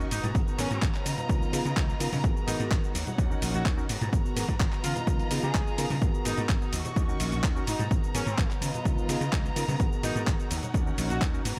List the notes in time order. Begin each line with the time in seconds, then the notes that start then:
Already playing: D#5 C#6, sub drop
0.00 A#4, cabasa
0.11 G#2 B3 D#4 F#4 A#5, open hi-hat, ride, cabasa, shaker
0.23 G#2, closed hi-hat, low conga, cabasa, shaker
0.34 G#1 B3 F#4 G#4 A#4, kick, closed hi-hat, cabasa, shaker
0.47 cabasa
0.58 G#2 B3 C#4 F#4 G#4 A#4, open hi-hat, ride, high conga, cabasa, shaker
0.71 G#2, closed hi-hat, cabasa, shaker
0.82 G#1, kick, clap, closed hi-hat, cabasa
0.94 clap, cabasa
1.06 C#3 F4 D#5, open hi-hat, ride, high conga, cabasa, shaker
1.18 closed hi-hat, low conga, cabasa, shaker
1.29 C#2 B3 D#4 F4 A#4, kick, closed hi-hat, cabasa, shaker
1.42 muted slap bass stroke, high conga, cabasa
1.53 C#3 B3 D#4 F4 G#4, open hi-hat, ride, cabasa, shaker
1.65 C#3, closed hi-hat, cabasa, shaker
1.77 C#2, kick, clap, closed hi-hat, cabasa
1.89 cabasa
2.00 C#3 B3 D#4 F4 A#4, open hi-hat, ride, cabasa, shaker
2.12 C#3, open hi-hat, low conga, cabasa, shaker
2.23 G#1 B3 F#4 G#4 A#4, kick, closed hi-hat, cabasa
2.37 cabasa
2.47 G#2 B3 D#4 F#4 G#4 A#4, open hi-hat, ride, high conga, cabasa, shaker
2.59 G#2, closed hi-hat, cabasa, shaker
2.71 G#1, kick, clap, closed hi-hat, cabasa
2.84 cabasa
2.95 D#2 D#4 C#5 F#5, open hi-hat, ride, high conga, cabasa, shaker
3.07 closed hi-hat, low conga, cabasa, shaker
3.18 D#2 C#4 D#4 F#4 A#4, kick, closed hi-hat, cabasa, shaker
3.30 C#4 D#4 F#4 A#4, high conga, cabasa
3.42 A#1, open hi-hat, ride, cabasa, shaker
3.54 A#1 F#4, closed hi-hat, cabasa, shaker
3.66 kick, clap, closed hi-hat, cabasa
3.77 C#4 D#4 F#4 A#4, cabasa
3.89 G#2 B3 F#4 A#5, open hi-hat, ride, cabasa, shaker
4.01 G#2, closed hi-hat, low conga, cabasa, shaker
4.12 G#1 B3 F#4 G#4 A#4, kick, closed hi-hat, cabasa, shaker
4.25 cabasa
4.36 G#2 B3 F#4 G#4 A#4, open hi-hat, ride, high conga, cabasa, shaker
4.48 G#2, kick, closed hi-hat, cabasa, shaker
4.60 G#1, kick, clap, closed hi-hat, cabasa
4.72 clap, cabasa
4.84 C#3 F4 D#5, open hi-hat, ride, high conga, cabasa, shaker
4.96 closed hi-hat, low conga, cabasa, shaker
5.07 C#2 B3 D#4 F4 A#4, kick, closed hi-hat, cabasa, shaker
5.19 muted slap bass stroke, closed hi-hat, high conga, cabasa
5.31 C#3 B3 D#4 F4 G#4, open hi-hat, ride, cabasa, shaker
5.43 C#3 G#4, closed hi-hat, cabasa, shaker
5.54 C#2, kick, clap, closed hi-hat, cabasa
5.67 cabasa
5.78 C#3 B3 D#4 F4 A#4, open hi-hat, ride, cabasa, shaker
5.90 C#3, open hi-hat, low conga, cabasa, shaker
6.01 G#1 B3 F#4 G#4 A#4, kick, closed hi-hat, cabasa, shaker
6.14 cabasa
6.25 G#2 B3 D#4 F#4 G#4 A#4, open hi-hat, ride, high conga, cabasa, shaker
6.37 G#2, closed hi-hat, cabasa, shaker
6.49 G#1, kick, clap, closed hi-hat, cabasa
6.62 cabasa
6.73 D#2 D#5 C#6, open hi-hat, ride, high conga, cabasa, shaker
6.85 closed hi-hat, low conga, cabasa, shaker
6.96 D#2 C#4 D#4 F#4 A#4, kick, closed hi-hat, cabasa, shaker
7.08 C#4 D#4 F#4 A#4, high conga, cabasa
7.20 A#1, open hi-hat, ride, cabasa, shaker
7.32 A#1, closed hi-hat, cabasa, shaker
7.43 D#2, kick, clap, closed hi-hat, cabasa
7.56 C#4 D#4 F#4 A#4, cabasa
7.67 G#2 B3 D#4 A#5, open hi-hat, ride, cabasa, shaker
7.79 G#2, closed hi-hat, low conga, cabasa, shaker
7.91 G#1 B3 F#4 G#4 A#4, kick, closed hi-hat, cabasa, shaker
8.04 cabasa
8.14 G#2 B3 C#4 F#4 G#4 A#4, open hi-hat, ride, high conga, cabasa, shaker
8.26 G#2, closed hi-hat, cabasa, shaker
8.38 G#1, kick, clap, closed hi-hat, cabasa
8.50 clap, cabasa
8.61 C#3 F4 D#5 A#5, open hi-hat, ride, high conga, cabasa, shaker
8.74 closed hi-hat, low conga, cabasa, shaker
8.85 C#2 B3 D#4 F4 A#4, kick, closed hi-hat, cabasa, shaker
8.97 muted slap bass stroke, high conga, cabasa
9.09 C#3 B3 D#4 F4 G#4, open hi-hat, ride, cabasa, shaker
9.21 C#3, closed hi-hat, cabasa, shaker
9.33 C#2, kick, clap, closed hi-hat, cabasa
9.45 cabasa
9.56 C#3 B3 D#4 F4 A#4, open hi-hat, ride, cabasa, shaker
9.68 C#3, open hi-hat, low conga, cabasa, shaker
9.79 G#1 B3 F#4 G#4 A#4, kick, closed hi-hat, cabasa, shaker
9.92 cabasa
10.03 G#2 B3 D#4 F#4 G#4 A#4, open hi-hat, ride, high conga, cabasa, shaker
10.16 G#2, closed hi-hat, cabasa, shaker
10.27 G#1, kick, clap, closed hi-hat, cabasa
10.40 cabasa
10.50 D#2 D#4 C#5 F#5, open hi-hat, ride, high conga, cabasa, shaker
10.63 closed hi-hat, low conga, cabasa, shaker
10.74 D#2 C#4 D#4 F#4 A#4, kick, closed hi-hat, cabasa, shaker
10.86 C#4 D#4 F#4 A#4, high conga, cabasa
10.98 A#1, open hi-hat, ride, cabasa, shaker
11.10 A#1 F#4, closed hi-hat, cabasa, shaker
11.21 D#2, kick, clap, closed hi-hat, cabasa
11.33 C#4 D#4 F#4 A#4, cabasa
11.45 G#2 B3 F#4 A#5, open hi-hat, ride, cabasa, shaker